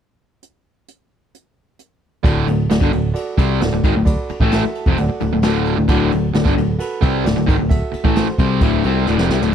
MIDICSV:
0, 0, Header, 1, 8, 480
1, 0, Start_track
1, 0, Tempo, 455235
1, 442, Time_signature, 4, 2, 24, 8
1, 10066, End_track
2, 0, Start_track
2, 0, Title_t, "Grand piano"
2, 0, Program_c, 0, 0
2, 2350, Note_on_c, 0, 74, 90
2, 2354, Note_on_c, 0, 66, 81
2, 2359, Note_on_c, 0, 69, 74
2, 2741, Note_off_c, 0, 74, 0
2, 2742, Note_off_c, 0, 66, 0
2, 2745, Note_off_c, 0, 69, 0
2, 2840, Note_on_c, 0, 66, 82
2, 2844, Note_on_c, 0, 69, 74
2, 2849, Note_on_c, 0, 74, 92
2, 3225, Note_off_c, 0, 66, 0
2, 3227, Note_off_c, 0, 69, 0
2, 3230, Note_off_c, 0, 74, 0
2, 3307, Note_on_c, 0, 66, 82
2, 3308, Note_on_c, 0, 74, 88
2, 3312, Note_on_c, 0, 69, 71
2, 3699, Note_off_c, 0, 66, 0
2, 3699, Note_off_c, 0, 74, 0
2, 3702, Note_off_c, 0, 69, 0
2, 3796, Note_on_c, 0, 69, 76
2, 3800, Note_on_c, 0, 74, 89
2, 3805, Note_on_c, 0, 66, 83
2, 4184, Note_off_c, 0, 69, 0
2, 4186, Note_off_c, 0, 74, 0
2, 4188, Note_off_c, 0, 66, 0
2, 4269, Note_on_c, 0, 66, 82
2, 4273, Note_on_c, 0, 69, 72
2, 4273, Note_on_c, 0, 74, 94
2, 4660, Note_off_c, 0, 66, 0
2, 4662, Note_off_c, 0, 69, 0
2, 4662, Note_off_c, 0, 74, 0
2, 4788, Note_on_c, 0, 69, 75
2, 4788, Note_on_c, 0, 76, 86
2, 4790, Note_on_c, 0, 66, 83
2, 5005, Note_on_c, 0, 81, 67
2, 5160, Note_off_c, 0, 69, 0
2, 5160, Note_off_c, 0, 76, 0
2, 5161, Note_off_c, 0, 66, 0
2, 5228, Note_off_c, 0, 81, 0
2, 5255, Note_on_c, 0, 66, 81
2, 5258, Note_on_c, 0, 78, 71
2, 5262, Note_on_c, 0, 74, 84
2, 5263, Note_on_c, 0, 69, 71
2, 5633, Note_off_c, 0, 66, 0
2, 5637, Note_off_c, 0, 69, 0
2, 5637, Note_off_c, 0, 74, 0
2, 5697, Note_off_c, 0, 78, 0
2, 5737, Note_on_c, 0, 66, 82
2, 5739, Note_on_c, 0, 69, 79
2, 5741, Note_on_c, 0, 74, 90
2, 6114, Note_off_c, 0, 66, 0
2, 6115, Note_off_c, 0, 69, 0
2, 6179, Note_off_c, 0, 74, 0
2, 6217, Note_on_c, 0, 69, 79
2, 6220, Note_on_c, 0, 66, 78
2, 6225, Note_on_c, 0, 74, 88
2, 6594, Note_off_c, 0, 69, 0
2, 6595, Note_off_c, 0, 66, 0
2, 6597, Note_off_c, 0, 74, 0
2, 6680, Note_on_c, 0, 66, 79
2, 6685, Note_on_c, 0, 69, 78
2, 6693, Note_on_c, 0, 74, 88
2, 7064, Note_off_c, 0, 66, 0
2, 7067, Note_off_c, 0, 69, 0
2, 7071, Note_off_c, 0, 74, 0
2, 7155, Note_on_c, 0, 66, 81
2, 7164, Note_on_c, 0, 69, 75
2, 7164, Note_on_c, 0, 71, 87
2, 7542, Note_off_c, 0, 66, 0
2, 7546, Note_off_c, 0, 69, 0
2, 7546, Note_off_c, 0, 71, 0
2, 7626, Note_on_c, 0, 66, 88
2, 7631, Note_on_c, 0, 69, 77
2, 7634, Note_on_c, 0, 74, 97
2, 8017, Note_off_c, 0, 66, 0
2, 8020, Note_off_c, 0, 69, 0
2, 8021, Note_off_c, 0, 74, 0
2, 8108, Note_on_c, 0, 66, 76
2, 8111, Note_on_c, 0, 69, 73
2, 8111, Note_on_c, 0, 76, 93
2, 8498, Note_off_c, 0, 66, 0
2, 8499, Note_off_c, 0, 69, 0
2, 8499, Note_off_c, 0, 76, 0
2, 8604, Note_on_c, 0, 66, 78
2, 8605, Note_on_c, 0, 69, 77
2, 8611, Note_on_c, 0, 72, 93
2, 8986, Note_off_c, 0, 66, 0
2, 8986, Note_off_c, 0, 69, 0
2, 8989, Note_off_c, 0, 72, 0
2, 9084, Note_on_c, 0, 69, 71
2, 9090, Note_on_c, 0, 66, 83
2, 9101, Note_on_c, 0, 76, 88
2, 9466, Note_off_c, 0, 69, 0
2, 9469, Note_off_c, 0, 66, 0
2, 9474, Note_off_c, 0, 76, 0
2, 9574, Note_on_c, 0, 69, 77
2, 9576, Note_on_c, 0, 66, 85
2, 9584, Note_on_c, 0, 74, 91
2, 9951, Note_off_c, 0, 69, 0
2, 9952, Note_off_c, 0, 66, 0
2, 9956, Note_off_c, 0, 74, 0
2, 10066, End_track
3, 0, Start_track
3, 0, Title_t, "Overdriven electric guitar"
3, 0, Program_c, 1, 29
3, 2369, Note_on_c, 1, 38, 94
3, 2380, Note_on_c, 1, 45, 95
3, 2383, Note_on_c, 1, 50, 96
3, 2599, Note_off_c, 1, 38, 0
3, 2604, Note_off_c, 1, 45, 0
3, 2606, Note_off_c, 1, 50, 0
3, 2613, Note_on_c, 1, 38, 61
3, 2626, Note_on_c, 1, 45, 71
3, 2800, Note_off_c, 1, 38, 0
3, 2806, Note_off_c, 1, 45, 0
3, 2850, Note_on_c, 1, 38, 68
3, 2860, Note_on_c, 1, 45, 67
3, 2954, Note_off_c, 1, 38, 0
3, 2958, Note_on_c, 1, 43, 84
3, 2963, Note_off_c, 1, 45, 0
3, 2968, Note_on_c, 1, 50, 96
3, 3069, Note_off_c, 1, 43, 0
3, 3073, Note_on_c, 1, 38, 64
3, 3076, Note_off_c, 1, 50, 0
3, 3080, Note_on_c, 1, 45, 64
3, 3270, Note_off_c, 1, 38, 0
3, 3274, Note_off_c, 1, 45, 0
3, 3560, Note_on_c, 1, 48, 85
3, 3566, Note_on_c, 1, 55, 99
3, 3568, Note_on_c, 1, 60, 98
3, 3794, Note_off_c, 1, 48, 0
3, 3798, Note_off_c, 1, 55, 0
3, 3798, Note_off_c, 1, 60, 0
3, 3816, Note_on_c, 1, 38, 60
3, 3820, Note_on_c, 1, 45, 69
3, 3915, Note_off_c, 1, 38, 0
3, 3927, Note_off_c, 1, 45, 0
3, 3928, Note_on_c, 1, 38, 59
3, 3940, Note_on_c, 1, 45, 66
3, 4046, Note_off_c, 1, 38, 0
3, 4050, Note_off_c, 1, 45, 0
3, 4050, Note_on_c, 1, 44, 90
3, 4054, Note_on_c, 1, 51, 105
3, 4159, Note_off_c, 1, 44, 0
3, 4161, Note_off_c, 1, 51, 0
3, 4181, Note_on_c, 1, 45, 70
3, 4186, Note_on_c, 1, 38, 65
3, 4364, Note_off_c, 1, 45, 0
3, 4366, Note_off_c, 1, 38, 0
3, 4660, Note_on_c, 1, 45, 85
3, 4661, Note_on_c, 1, 52, 84
3, 4667, Note_on_c, 1, 57, 98
3, 4885, Note_off_c, 1, 45, 0
3, 4885, Note_off_c, 1, 52, 0
3, 4888, Note_off_c, 1, 57, 0
3, 5138, Note_on_c, 1, 41, 91
3, 5141, Note_on_c, 1, 48, 103
3, 5243, Note_off_c, 1, 41, 0
3, 5245, Note_off_c, 1, 48, 0
3, 5256, Note_on_c, 1, 38, 66
3, 5262, Note_on_c, 1, 45, 71
3, 5354, Note_off_c, 1, 38, 0
3, 5372, Note_off_c, 1, 45, 0
3, 5488, Note_on_c, 1, 38, 62
3, 5495, Note_on_c, 1, 45, 74
3, 5606, Note_off_c, 1, 38, 0
3, 5609, Note_off_c, 1, 45, 0
3, 5621, Note_on_c, 1, 38, 62
3, 5625, Note_on_c, 1, 45, 74
3, 5715, Note_off_c, 1, 38, 0
3, 5720, Note_off_c, 1, 45, 0
3, 5727, Note_on_c, 1, 38, 96
3, 5733, Note_on_c, 1, 45, 92
3, 5742, Note_on_c, 1, 50, 96
3, 6078, Note_off_c, 1, 38, 0
3, 6080, Note_off_c, 1, 45, 0
3, 6085, Note_off_c, 1, 50, 0
3, 6089, Note_on_c, 1, 38, 59
3, 6093, Note_on_c, 1, 45, 70
3, 6189, Note_off_c, 1, 38, 0
3, 6194, Note_off_c, 1, 45, 0
3, 6202, Note_on_c, 1, 38, 94
3, 6206, Note_on_c, 1, 45, 97
3, 6214, Note_on_c, 1, 50, 114
3, 6435, Note_off_c, 1, 38, 0
3, 6437, Note_off_c, 1, 45, 0
3, 6441, Note_off_c, 1, 50, 0
3, 6461, Note_on_c, 1, 38, 57
3, 6472, Note_on_c, 1, 45, 72
3, 6643, Note_off_c, 1, 38, 0
3, 6649, Note_off_c, 1, 45, 0
3, 6712, Note_on_c, 1, 38, 67
3, 6713, Note_on_c, 1, 45, 66
3, 6817, Note_off_c, 1, 38, 0
3, 6817, Note_off_c, 1, 45, 0
3, 6830, Note_on_c, 1, 43, 87
3, 6834, Note_on_c, 1, 50, 100
3, 6929, Note_off_c, 1, 43, 0
3, 6931, Note_off_c, 1, 50, 0
3, 6943, Note_on_c, 1, 38, 65
3, 6943, Note_on_c, 1, 45, 69
3, 7124, Note_off_c, 1, 38, 0
3, 7124, Note_off_c, 1, 45, 0
3, 7415, Note_on_c, 1, 48, 90
3, 7419, Note_on_c, 1, 55, 95
3, 7427, Note_on_c, 1, 60, 106
3, 7640, Note_off_c, 1, 48, 0
3, 7642, Note_off_c, 1, 55, 0
3, 7645, Note_on_c, 1, 38, 63
3, 7647, Note_off_c, 1, 60, 0
3, 7652, Note_on_c, 1, 45, 66
3, 7747, Note_off_c, 1, 38, 0
3, 7752, Note_off_c, 1, 45, 0
3, 7760, Note_on_c, 1, 38, 66
3, 7764, Note_on_c, 1, 45, 69
3, 7866, Note_off_c, 1, 38, 0
3, 7870, Note_on_c, 1, 44, 96
3, 7874, Note_off_c, 1, 45, 0
3, 7878, Note_on_c, 1, 51, 99
3, 7988, Note_off_c, 1, 44, 0
3, 7992, Note_off_c, 1, 51, 0
3, 8005, Note_on_c, 1, 38, 63
3, 8007, Note_on_c, 1, 45, 68
3, 8194, Note_off_c, 1, 38, 0
3, 8195, Note_off_c, 1, 45, 0
3, 8478, Note_on_c, 1, 45, 86
3, 8485, Note_on_c, 1, 52, 87
3, 8494, Note_on_c, 1, 57, 92
3, 8712, Note_off_c, 1, 45, 0
3, 8715, Note_off_c, 1, 52, 0
3, 8719, Note_off_c, 1, 57, 0
3, 8850, Note_on_c, 1, 48, 85
3, 8853, Note_on_c, 1, 60, 93
3, 8856, Note_on_c, 1, 55, 91
3, 9078, Note_off_c, 1, 48, 0
3, 9079, Note_off_c, 1, 60, 0
3, 9080, Note_off_c, 1, 55, 0
3, 9083, Note_on_c, 1, 38, 94
3, 9097, Note_on_c, 1, 45, 98
3, 9099, Note_on_c, 1, 50, 110
3, 9314, Note_off_c, 1, 38, 0
3, 9321, Note_off_c, 1, 45, 0
3, 9322, Note_off_c, 1, 50, 0
3, 9322, Note_on_c, 1, 48, 94
3, 9333, Note_on_c, 1, 55, 88
3, 9334, Note_on_c, 1, 60, 103
3, 9553, Note_off_c, 1, 48, 0
3, 9559, Note_off_c, 1, 55, 0
3, 9560, Note_off_c, 1, 60, 0
3, 9565, Note_on_c, 1, 38, 88
3, 9569, Note_on_c, 1, 45, 96
3, 9675, Note_off_c, 1, 38, 0
3, 9677, Note_off_c, 1, 45, 0
3, 9681, Note_on_c, 1, 41, 88
3, 9697, Note_on_c, 1, 48, 91
3, 9793, Note_off_c, 1, 41, 0
3, 9795, Note_off_c, 1, 48, 0
3, 9807, Note_on_c, 1, 48, 88
3, 9818, Note_on_c, 1, 55, 102
3, 9916, Note_off_c, 1, 48, 0
3, 9922, Note_off_c, 1, 55, 0
3, 9927, Note_on_c, 1, 38, 83
3, 9937, Note_on_c, 1, 45, 99
3, 10032, Note_off_c, 1, 38, 0
3, 10041, Note_off_c, 1, 45, 0
3, 10066, End_track
4, 0, Start_track
4, 0, Title_t, "Picked electric bass"
4, 0, Program_c, 2, 34
4, 2363, Note_on_c, 2, 26, 92
4, 2586, Note_off_c, 2, 26, 0
4, 2598, Note_on_c, 2, 26, 76
4, 2824, Note_off_c, 2, 26, 0
4, 2853, Note_on_c, 2, 26, 75
4, 2956, Note_off_c, 2, 26, 0
4, 2963, Note_on_c, 2, 31, 89
4, 3074, Note_off_c, 2, 31, 0
4, 3091, Note_on_c, 2, 26, 77
4, 3311, Note_off_c, 2, 26, 0
4, 3561, Note_on_c, 2, 36, 96
4, 3785, Note_off_c, 2, 36, 0
4, 3808, Note_on_c, 2, 26, 76
4, 3915, Note_off_c, 2, 26, 0
4, 3921, Note_on_c, 2, 26, 77
4, 4034, Note_off_c, 2, 26, 0
4, 4044, Note_on_c, 2, 32, 90
4, 4155, Note_off_c, 2, 32, 0
4, 4164, Note_on_c, 2, 26, 78
4, 4387, Note_off_c, 2, 26, 0
4, 4639, Note_on_c, 2, 33, 90
4, 4864, Note_off_c, 2, 33, 0
4, 5127, Note_on_c, 2, 29, 88
4, 5237, Note_off_c, 2, 29, 0
4, 5257, Note_on_c, 2, 26, 84
4, 5362, Note_off_c, 2, 26, 0
4, 5505, Note_on_c, 2, 26, 79
4, 5606, Note_off_c, 2, 26, 0
4, 5631, Note_on_c, 2, 26, 75
4, 5730, Note_off_c, 2, 26, 0
4, 5738, Note_on_c, 2, 26, 91
4, 6066, Note_off_c, 2, 26, 0
4, 6097, Note_on_c, 2, 26, 79
4, 6202, Note_off_c, 2, 26, 0
4, 6206, Note_on_c, 2, 26, 92
4, 6427, Note_off_c, 2, 26, 0
4, 6460, Note_on_c, 2, 26, 82
4, 6675, Note_off_c, 2, 26, 0
4, 6697, Note_on_c, 2, 26, 78
4, 6797, Note_off_c, 2, 26, 0
4, 6803, Note_on_c, 2, 31, 92
4, 6914, Note_off_c, 2, 31, 0
4, 6929, Note_on_c, 2, 26, 75
4, 7148, Note_off_c, 2, 26, 0
4, 7406, Note_on_c, 2, 36, 94
4, 7627, Note_off_c, 2, 36, 0
4, 7650, Note_on_c, 2, 26, 79
4, 7757, Note_off_c, 2, 26, 0
4, 7769, Note_on_c, 2, 26, 82
4, 7877, Note_off_c, 2, 26, 0
4, 7891, Note_on_c, 2, 32, 92
4, 7997, Note_off_c, 2, 32, 0
4, 8019, Note_on_c, 2, 26, 76
4, 8233, Note_off_c, 2, 26, 0
4, 8482, Note_on_c, 2, 33, 86
4, 8704, Note_off_c, 2, 33, 0
4, 8841, Note_on_c, 2, 36, 87
4, 9063, Note_off_c, 2, 36, 0
4, 9075, Note_on_c, 2, 26, 89
4, 9300, Note_off_c, 2, 26, 0
4, 9334, Note_on_c, 2, 36, 88
4, 9550, Note_off_c, 2, 36, 0
4, 9571, Note_on_c, 2, 26, 92
4, 9677, Note_off_c, 2, 26, 0
4, 9681, Note_on_c, 2, 29, 90
4, 9792, Note_off_c, 2, 29, 0
4, 9804, Note_on_c, 2, 36, 89
4, 9914, Note_off_c, 2, 36, 0
4, 9930, Note_on_c, 2, 26, 92
4, 10037, Note_off_c, 2, 26, 0
4, 10066, End_track
5, 0, Start_track
5, 0, Title_t, "Muted distorted electric guitar strokes"
5, 4532, Note_on_c, 9, 29, 56
5, 4638, Note_off_c, 9, 29, 0
5, 4891, Note_on_c, 9, 29, 58
5, 4996, Note_off_c, 9, 29, 0
5, 5372, Note_on_c, 9, 29, 57
5, 5478, Note_off_c, 9, 29, 0
5, 8348, Note_on_c, 9, 29, 58
5, 8454, Note_off_c, 9, 29, 0
5, 8731, Note_on_c, 9, 29, 57
5, 8837, Note_off_c, 9, 29, 0
5, 10066, End_track
6, 0, Start_track
6, 0, Title_t, "Muted overdriven electric guitar strokes"
6, 4543, Note_on_c, 9, 29, 59
6, 4649, Note_off_c, 9, 29, 0
6, 4895, Note_on_c, 9, 29, 58
6, 5000, Note_off_c, 9, 29, 0
6, 5367, Note_on_c, 9, 29, 57
6, 5472, Note_off_c, 9, 29, 0
6, 8371, Note_on_c, 9, 29, 55
6, 8477, Note_off_c, 9, 29, 0
6, 8738, Note_on_c, 9, 29, 54
6, 8844, Note_off_c, 9, 29, 0
6, 10066, End_track
7, 0, Start_track
7, 0, Title_t, "Muted picked electric bass strokes"
7, 4544, Note_on_c, 9, 29, 43
7, 4650, Note_off_c, 9, 29, 0
7, 4911, Note_on_c, 9, 29, 39
7, 5016, Note_off_c, 9, 29, 0
7, 5388, Note_on_c, 9, 29, 41
7, 5494, Note_off_c, 9, 29, 0
7, 8380, Note_on_c, 9, 29, 43
7, 8486, Note_off_c, 9, 29, 0
7, 8749, Note_on_c, 9, 29, 41
7, 8855, Note_off_c, 9, 29, 0
7, 10066, End_track
8, 0, Start_track
8, 0, Title_t, "Drums"
8, 448, Note_on_c, 9, 42, 55
8, 554, Note_off_c, 9, 42, 0
8, 929, Note_on_c, 9, 42, 56
8, 1035, Note_off_c, 9, 42, 0
8, 1418, Note_on_c, 9, 42, 58
8, 1524, Note_off_c, 9, 42, 0
8, 1886, Note_on_c, 9, 42, 59
8, 1992, Note_off_c, 9, 42, 0
8, 2366, Note_on_c, 9, 36, 101
8, 2372, Note_on_c, 9, 51, 94
8, 2471, Note_off_c, 9, 36, 0
8, 2477, Note_off_c, 9, 51, 0
8, 2609, Note_on_c, 9, 51, 73
8, 2715, Note_off_c, 9, 51, 0
8, 2849, Note_on_c, 9, 51, 97
8, 2859, Note_on_c, 9, 38, 102
8, 2954, Note_off_c, 9, 51, 0
8, 2964, Note_on_c, 9, 36, 104
8, 2965, Note_off_c, 9, 38, 0
8, 3069, Note_off_c, 9, 36, 0
8, 3084, Note_on_c, 9, 51, 72
8, 3189, Note_off_c, 9, 51, 0
8, 3326, Note_on_c, 9, 51, 100
8, 3431, Note_off_c, 9, 51, 0
8, 3563, Note_on_c, 9, 36, 101
8, 3568, Note_on_c, 9, 51, 75
8, 3668, Note_off_c, 9, 36, 0
8, 3674, Note_off_c, 9, 51, 0
8, 3806, Note_on_c, 9, 51, 98
8, 3817, Note_on_c, 9, 38, 108
8, 3912, Note_off_c, 9, 51, 0
8, 3922, Note_off_c, 9, 38, 0
8, 4044, Note_on_c, 9, 36, 101
8, 4050, Note_on_c, 9, 51, 71
8, 4150, Note_off_c, 9, 36, 0
8, 4156, Note_off_c, 9, 51, 0
8, 4286, Note_on_c, 9, 36, 109
8, 4287, Note_on_c, 9, 51, 96
8, 4391, Note_off_c, 9, 36, 0
8, 4392, Note_off_c, 9, 51, 0
8, 4527, Note_on_c, 9, 51, 69
8, 4632, Note_off_c, 9, 51, 0
8, 4643, Note_on_c, 9, 36, 98
8, 4749, Note_off_c, 9, 36, 0
8, 4760, Note_on_c, 9, 51, 85
8, 4770, Note_on_c, 9, 38, 109
8, 4865, Note_off_c, 9, 51, 0
8, 4876, Note_off_c, 9, 38, 0
8, 5007, Note_on_c, 9, 51, 66
8, 5113, Note_off_c, 9, 51, 0
8, 5126, Note_on_c, 9, 36, 103
8, 5231, Note_off_c, 9, 36, 0
8, 5244, Note_on_c, 9, 51, 89
8, 5350, Note_off_c, 9, 51, 0
8, 5484, Note_on_c, 9, 51, 65
8, 5589, Note_off_c, 9, 51, 0
8, 5716, Note_on_c, 9, 51, 87
8, 5727, Note_on_c, 9, 38, 106
8, 5822, Note_off_c, 9, 51, 0
8, 5832, Note_off_c, 9, 38, 0
8, 5962, Note_on_c, 9, 51, 63
8, 6068, Note_off_c, 9, 51, 0
8, 6201, Note_on_c, 9, 51, 94
8, 6205, Note_on_c, 9, 36, 103
8, 6307, Note_off_c, 9, 51, 0
8, 6310, Note_off_c, 9, 36, 0
8, 6448, Note_on_c, 9, 51, 69
8, 6554, Note_off_c, 9, 51, 0
8, 6687, Note_on_c, 9, 51, 90
8, 6698, Note_on_c, 9, 38, 111
8, 6792, Note_off_c, 9, 51, 0
8, 6803, Note_off_c, 9, 38, 0
8, 6806, Note_on_c, 9, 36, 107
8, 6912, Note_off_c, 9, 36, 0
8, 6936, Note_on_c, 9, 51, 73
8, 7041, Note_off_c, 9, 51, 0
8, 7169, Note_on_c, 9, 51, 107
8, 7274, Note_off_c, 9, 51, 0
8, 7407, Note_on_c, 9, 36, 99
8, 7410, Note_on_c, 9, 51, 73
8, 7513, Note_off_c, 9, 36, 0
8, 7515, Note_off_c, 9, 51, 0
8, 7655, Note_on_c, 9, 51, 95
8, 7665, Note_on_c, 9, 38, 101
8, 7760, Note_off_c, 9, 51, 0
8, 7771, Note_off_c, 9, 38, 0
8, 7888, Note_on_c, 9, 36, 101
8, 7896, Note_on_c, 9, 51, 74
8, 7993, Note_off_c, 9, 36, 0
8, 8001, Note_off_c, 9, 51, 0
8, 8125, Note_on_c, 9, 36, 105
8, 8127, Note_on_c, 9, 51, 101
8, 8231, Note_off_c, 9, 36, 0
8, 8232, Note_off_c, 9, 51, 0
8, 8367, Note_on_c, 9, 51, 73
8, 8472, Note_off_c, 9, 51, 0
8, 8485, Note_on_c, 9, 36, 104
8, 8590, Note_off_c, 9, 36, 0
8, 8601, Note_on_c, 9, 51, 99
8, 8611, Note_on_c, 9, 38, 109
8, 8706, Note_off_c, 9, 51, 0
8, 8717, Note_off_c, 9, 38, 0
8, 8840, Note_on_c, 9, 51, 73
8, 8841, Note_on_c, 9, 36, 104
8, 8946, Note_off_c, 9, 36, 0
8, 8946, Note_off_c, 9, 51, 0
8, 9077, Note_on_c, 9, 51, 93
8, 9079, Note_on_c, 9, 36, 106
8, 9182, Note_off_c, 9, 51, 0
8, 9184, Note_off_c, 9, 36, 0
8, 9313, Note_on_c, 9, 51, 70
8, 9418, Note_off_c, 9, 51, 0
8, 9561, Note_on_c, 9, 38, 61
8, 9667, Note_off_c, 9, 38, 0
8, 9688, Note_on_c, 9, 38, 72
8, 9793, Note_off_c, 9, 38, 0
8, 9808, Note_on_c, 9, 38, 85
8, 9914, Note_off_c, 9, 38, 0
8, 9934, Note_on_c, 9, 38, 91
8, 10040, Note_off_c, 9, 38, 0
8, 10066, End_track
0, 0, End_of_file